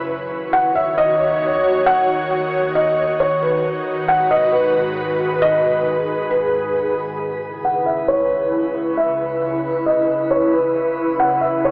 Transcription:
0.09 D#2 D#3 F#4 C#5
0.53 F#5
0.75 E5
0.98 D#5
1.86 F#5
2.75 D#5
3.20 C#5
3.42 B4
3.64 G#2 F#4 B4
4.08 F#5
4.31 D#5
4.52 B4
5.42 G#4 D#5
6.30 B4
7.20 C#2 C#3 E4 B4
7.65 F#5
7.86 E5
8.08 C#5
8.97 E5
9.86 D#5
10.31 C#5
10.54 B4
10.75 F#2
11.20 F#5
11.41 E5
11.65 C#5

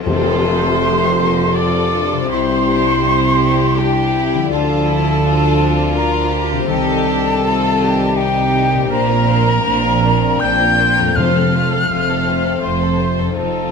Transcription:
Already playing: F3 A4
0.00 C4 F4
0.05 F1 F2 C4 F4 A4 C5 C6, tam-tam
0.44 A3
0.81 A3 G4 C5
1.19 A#3
1.55 C4 F4 A4 D5 D6
1.93 D4
2.13 C3
2.17 G3
2.22 C4
2.26 C2 E4 G4
2.30 C3 G3 E4 C5 C6
2.68 D4
3.04 C4 E4 G4
3.78 D4 G4 G5
4.14 E4
4.34 D3
4.38 F3
4.43 D4
4.51 D2 D3 F3 D4 F4 A4 A5
4.87 E4
5.23 D4 F4
5.59 C4
5.96 D4 F4 A#4 A#5
6.33 G4
6.52 C3
6.57 G3
6.61 C4
6.66 D#3 A4 A5
6.70 C2 C3 D#3 G3 D#4 G4
7.07 D4
7.43 C4 F4 A4
7.81 G4
8.16 D#4 G4 G5
8.73 A#2
8.77 A#3
8.82 C4
8.87 A#1 A#3 D4 A#4
8.91 A#2 C4 D4 C5 A#5
9.09 C4 F4 A#4
9.27 A#3 D4 C5
9.45 C4 F4 A#4
9.63 A#1 A#2 A#3 D4 C5
9.81 C4 F4 A#4
10.00 A#3 D4 C5
10.21 C4 F4 A#4
10.40 A#1 A#2 A#3 D4 C5 G5 G6
10.59 C4 F4 A#4
10.76 A#3 D4 C5
10.95 F2 C4 F4 A#4
11.04 A3
11.08 C4
11.12 A3 F4 C5 F6
11.16 F1 F2 A3 C4 F4 F5
11.33 C4 A4
11.53 A3 F4 C5
11.69 A4
11.73 C4 A4
11.90 F1 F2 A3 F4 C5
12.08 C4 A4
12.26 A3 F4 C5
12.44 C4 A4
12.62 F1 F2 A3 F4 C5 C6
12.80 C4 A4
12.98 A3 F4 C5
13.18 F2 C4 A4
13.24 C4
13.28 D#4
13.33 F2 C4 D#4 F4 A4 A5
13.37 F1 C4 D#4

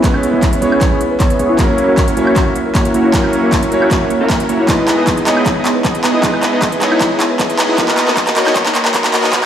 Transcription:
Already playing: G#3 B3 C#4 E4 B4 C#5
0.02 C#2 G#3 B3 C#4 E4 G#4 B4 C#5, kick, clap, closed hi-hat
0.14 E4, high woodblock
0.23 B3, closed hi-hat
0.34 C#2 B3 C#4 E4 G#4 B4 C#5
0.43 B3, kick, clap, closed hi-hat
0.53 B4, closed hi-hat
0.60 C#2 G#3 B3 C#4 E4 G#4 C#5, closed hi-hat
0.72 E4, high woodblock
0.81 B3, kick, clap, closed hi-hat
0.92 C#2 B3 C#4 E4 G#4 C#5
1.01 B3, closed hi-hat
1.11 B4
1.20 C#2 B3 C#4 E4 G#4 C#5, kick, clap, closed hi-hat
1.30 B4, closed hi-hat
1.39 C#2 B3 C#4 E4 G#4 C#5, closed hi-hat
1.50 E4
1.57 F#1 F#3 A#3 C#4 E4 F#4 A#4 C#5, kick, clap, closed hi-hat
1.69 E4
1.78 A#3, closed hi-hat
1.88 F#1 A#3 C#4 E4 F#4 A#4 C#5
1.98 kick, clap, closed hi-hat
2.08 A#4, closed hi-hat
2.15 F#1 F#3 A#3 C#4 E4 F#4 C#5, closed hi-hat
2.27 E4, high woodblock
2.36 kick, clap, closed hi-hat
2.47 F#1 A#3 C#4 E4 F#4 C#5
2.56 A#3, closed hi-hat
2.66 A#4
2.75 A#3 C#4 E4 F#4 C#5, kick, clap, closed hi-hat
2.85 A#4, closed hi-hat
2.94 F#1 A#3 C#4 E4 F#4 C#5, closed hi-hat
3.05 E4
3.12 F#3 A#3 C#4 E4 F#4 C#5, kick, clap, closed hi-hat
3.16 A#4
3.24 E4, high woodblock
3.33 A#3, closed hi-hat
3.43 F#1 A#3 C#4 E4 F#4 A#4 C#5
3.52 A#3, kick, clap, closed hi-hat
3.63 A#4, closed hi-hat
3.70 F#1 F#3 A#3 C#4 E4 F#4 C#5, closed hi-hat
3.74 C#5
3.82 E4, high woodblock
3.91 A#3, kick, clap, closed hi-hat
4.01 F#1 A#3 C#4 E4 F#4 C#5
4.10 A#3, closed hi-hat
4.21 F#1 A#3 C#4 E4 F#4 A#4
4.30 A#3, kick, clap, closed hi-hat
4.40 A#4, closed hi-hat
4.49 F#1 A#3 C#4 E4 F#4 C#5, closed hi-hat
4.60 E4
4.66 G#3 B3 D#4 E4 G#4 D#5, kick, clap, closed hi-hat, riser
4.70 B4
4.79 E4
4.88 B3, clap, closed hi-hat
4.98 E1 B3 D#4 E4 G#4 B4 D#5
5.07 B3, kick, clap, closed hi-hat
5.17 B4, closed hi-hat
5.25 E1 G#3 B3 D#4 E4 G#4 C#5 D#5, clap, closed hi-hat
5.37 E4, high woodblock
5.46 B3, kick, clap, closed hi-hat
5.56 B3 D#4 E4 G#4 D#5
5.65 B3, clap, closed hi-hat
5.76 B4
5.85 B3 D#4 E4 G#4 D#5, kick, clap, closed hi-hat
5.95 B4, closed hi-hat
6.04 E1 B3 D#4 E4 G#4 D#5, clap, closed hi-hat
6.14 E4
6.21 G#3 B3 D#4 E4 G#4 B4 D#5, kick, clap, closed hi-hat
6.34 E4, high woodblock
6.43 B3, clap, closed hi-hat
6.53 E1 B3 D#4 E4 G#4 B4 D#5
6.62 B3, kick, clap, closed hi-hat
6.72 B4, closed hi-hat
6.79 E1 G#3 B3 D#4 E4 G#4 D#5, clap, closed hi-hat
6.83 C#5
6.92 E4, high woodblock
7.01 B3, kick, clap, closed hi-hat
7.11 E1 B3 D#4 E4 G#4 D#5
7.20 B3, clap, closed hi-hat
7.30 B4
7.39 B3 D#4 E4 G#4 D#5, kick, clap, closed hi-hat
7.50 B4, closed hi-hat
7.59 E2 B3 D#4 E4 G#4 D#5, clap, closed hi-hat
7.69 E4
7.76 A#3 B3 D#4 F#4 A#4 B4 D#5, kick, clap, closed hi-hat
7.88 D#4, clap
7.97 A#3, clap, closed hi-hat
8.08 B1 B3 D#4 F#4 A#4 D#5, clap
8.17 A#3, kick, clap, closed hi-hat
8.27 A#4, clap, closed hi-hat
8.34 B1 A#3 B3 D#4 F#4 A#4 C#5 D#5, clap, closed hi-hat
8.47 D#4, clap, high woodblock
8.56 A#3, kick, clap, closed hi-hat
8.66 B1 B3 D#4 F#4 A#4 D#5, clap
8.75 A#3, clap, closed hi-hat
8.85 A#4, clap
8.94 B1 B3 D#4 F#4 A#4 D#5, kick, clap, closed hi-hat
9.04 A#4, clap, closed hi-hat
9.14 B1 A#3 B3 D#4 F#4 A#4 D#5, clap, closed hi-hat
9.24 D#4, clap
9.31 B3 D#4 F#4 A#4 D#5, kick, clap, closed hi-hat
9.35 B4

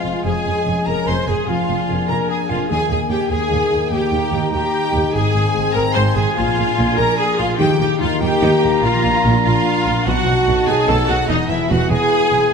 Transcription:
Already playing: F3 G#3 C4 F4 C5 F5 G#5
0.04 F1 F2 G#4
0.15 C4
0.23 F1 F2 F3 C#4 G#4 G#5
0.36 G#3
0.45 F1 F2 C#4
0.57 G#4
0.65 F1 F2 C#4
0.77 C#5
0.86 F1 F2 A#4 G#5 A#5
0.98 C#5
1.07 F1 F2 C5 C6
1.18 C#5
1.26 F1 F2 G#4 G#5
1.39 C#4
1.47 F1 F2 F3 A#3 D4 F4 F5
1.59 A#3
1.69 F1 F2 D4
1.79 G#4
1.88 F1 F2 A#4
2.00 D5
2.08 F1 F2 A#4 G#5 A#5
2.29 G#4 G#5
2.40 D5
2.48 F1 F2 F4 A#4 F5
2.60 D4
2.69 D#2 D#3 D#4 G#4 G#5
2.79 A#3
2.89 D#2 D#4 G#4 G#5
3.01 G#4
3.09 D#2 G4 A#4 G5
3.20 D#5
3.30 D#2 G#4 G#5
3.40 A#5
3.50 D#2
3.61 D#5
3.71 D#2 A#4
3.81 D#4
3.90 D#2 D#3 G4 G5 A#5
4.01 A#3
4.12 D#2 D#4
4.22 A#4
4.32 D#2 D#4
4.43 D#5
4.50 D#2 G4 G5
4.54 D#2
4.63 D#5
4.73 A#5
4.84 D#5
4.93 D#2 A#4
5.05 D#4
5.11 G#2 C4 G#4 G#5
5.15 G#1 G#2 G#5
5.25 D#3
5.34 G#1 G#2 C4
5.45 D#4
5.54 G#1 G#2 G#4
5.65 C5
5.73 G#1 G#2 A#4 D#5 A#5
5.86 G#5
5.94 G#1 G#2 C5 D#5 C6
6.06 C5
6.15 G#1 G#2 G#4 G#5
6.27 C4
6.35 A#1 A#2 A#3 D4 F4 F5
6.47 F3
6.57 A#1 A#2 A#3
6.67 D4
6.77 A#1 A#2 G#4
6.96 A#1 A#2 A#4 D5 A#5
7.08 G#5
7.17 G#4 D5 G#5
7.28 A#4
7.38 A#1 A#2 F4 G#4 F5
7.49 A#3
7.57 D#2 D#3 D#4 G4 G5 A#5
7.69 A#3
7.78 D#2 D#3 D#4 G4 G5
7.89 A#4
7.99 D#2 D#3 D#4 F4 F5
8.10 D#5
8.20 D#2 D#3 G4 G5 A#5
8.30 D#5
8.42 D#2 D#3
8.51 D#5
8.63 D#2 D#3
8.73 D#4
8.82 A#1 A#2 D4 F4 F5
8.93 F3
9.03 A#1 A#2 D4
9.14 F4
9.24 A#1 A#2 A#4
9.44 A#1 A#2 F4 F5
9.65 F5
9.76 D5
9.85 A#1 A#2
9.96 D4
10.05 B1 B2 F#3 D#4 F#4 F#5 A5
10.17 F#3
10.26 B1 B2 B3
10.37 D#4
10.46 B1 B2 A4
10.58 B4
10.67 B1 B2 G#4 D#5 G#5
10.78 A5
10.88 B1 B2 A4 A5
11.07 B1 B2 F#4 A4 F#5
11.19 B3
11.28 E1 E2 E3 B3 D#4 E4 D#5 G#5
11.48 E1 E2 E4 E5
11.60 G#4
11.69 E1 E2 F#4 B4 F#5
11.81 E5
11.90 E1 E2 G#4 G#5
12.01 B5
12.22 E5
12.31 E1 E2 B4
12.43 E4

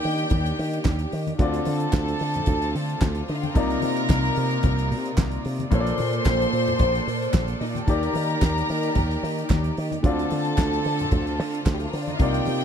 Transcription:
Already playing: D#3 A#3 D4 G4 D5 G5
0.03 D#3, open hi-hat
0.18 closed hi-hat
0.30 D#2, kick, closed hi-hat, muted conga, low conga
0.46 closed hi-hat
0.59 D#3, open hi-hat
0.73 closed hi-hat
0.84 D#2, kick, snare, clap, closed hi-hat, high conga
0.99 closed hi-hat
1.12 D#3, open hi-hat
1.27 closed hi-hat, high conga
1.39 D2 D3 A3 C4 F4 A4 D5 A5, kick, closed hi-hat, muted conga
1.54 closed hi-hat
1.65 D3, open hi-hat, muted conga
1.80 closed hi-hat
1.93 D2, kick, snare, clap, closed hi-hat, high conga
2.08 closed hi-hat
2.19 D3, open hi-hat
2.34 closed hi-hat, low conga
2.46 D2, kick, closed hi-hat, muted conga, low conga
2.62 closed hi-hat
2.75 D3, open hi-hat
2.90 closed hi-hat
3.01 D2, kick, snare, clap, closed hi-hat, high conga
3.15 closed hi-hat
3.28 D3 D#4 D#5, open hi-hat
3.35 F4 F5
3.43 G4 G5, closed hi-hat, high conga
3.49 A4 A5
3.54 C2 C3 A#3 D#4 F4 A#4 D5 A#5, kick, closed hi-hat, muted conga
3.70 closed hi-hat
3.82 C3, open hi-hat, muted conga
3.97 closed hi-hat
4.09 C2, kick, snare, clap, closed hi-hat, high conga
4.25 closed hi-hat
4.36 C3, open hi-hat
4.51 closed hi-hat
4.63 C2, kick, closed hi-hat, muted conga, low conga
4.79 closed hi-hat
4.91 C3, open hi-hat, muted conga
5.06 closed hi-hat
5.17 C2, kick, snare, clap, closed hi-hat, high conga
5.31 closed hi-hat
5.45 C3, open hi-hat
5.59 closed hi-hat, high conga
5.71 A#1 A#2 A#3 A4 C5 C#5 C6, kick, closed hi-hat, muted conga
5.80 D5
5.87 closed hi-hat
5.98 A#2, open hi-hat, muted conga
6.13 closed hi-hat
6.26 A#1, kick, snare, clap, closed hi-hat, high conga
6.42 closed hi-hat
6.53 A#2, open hi-hat
6.67 closed hi-hat, low conga
6.79 A#1, kick, closed hi-hat, muted conga, low conga
6.95 closed hi-hat
7.07 A#2, open hi-hat, muted conga
7.22 closed hi-hat
7.33 A#1, kick, snare, clap, closed hi-hat, high conga
7.48 closed hi-hat
7.61 A#2 D#4 D#5, open hi-hat
7.68 F4 F5
7.75 G4 G5, closed hi-hat, high conga
7.81 A4 A5
7.87 D#2 D#3 A#3 G4 A#4 D5 A#5, kick, closed hi-hat, muted conga
8.03 closed hi-hat
8.14 D#3, open hi-hat, muted conga
8.29 closed hi-hat
8.41 D#2, kick, snare, clap, closed hi-hat, high conga
8.58 closed hi-hat
8.69 D#3, open hi-hat
8.83 closed hi-hat
8.95 D#2, kick, closed hi-hat, muted conga, low conga
9.11 closed hi-hat
9.23 D#3, open hi-hat, muted conga
9.39 closed hi-hat
9.50 D#2, kick, snare, clap, closed hi-hat, high conga
9.64 closed hi-hat
9.77 D#3, open hi-hat
9.92 closed hi-hat, high conga
10.03 D2 D3 A3 C4 F4 A4 D5 A5, kick, closed hi-hat, muted conga
10.19 closed hi-hat
10.30 D3, open hi-hat, muted conga
10.45 closed hi-hat
10.58 D2, kick, snare, clap, closed hi-hat, high conga
10.73 closed hi-hat
10.84 D3, open hi-hat
10.99 closed hi-hat, low conga
11.11 D2, kick, closed hi-hat, muted conga, low conga
11.27 closed hi-hat
11.40 D3, open hi-hat
11.55 closed hi-hat
11.66 D2, kick, snare, clap, closed hi-hat, high conga
11.73 G3 G4
11.80 A3 A4, closed hi-hat
11.87 A#3 A#4
11.93 D3 C4 C5, open hi-hat
12.01 D4 D5
12.07 D#4 D#5, closed hi-hat, high conga
12.15 C3 F4 F5
12.19 C2 C3 A#3 D#4 F4 G4 D5 G5, kick, closed hi-hat, muted conga
12.34 closed hi-hat
12.46 C3, open hi-hat, muted conga
12.61 closed hi-hat

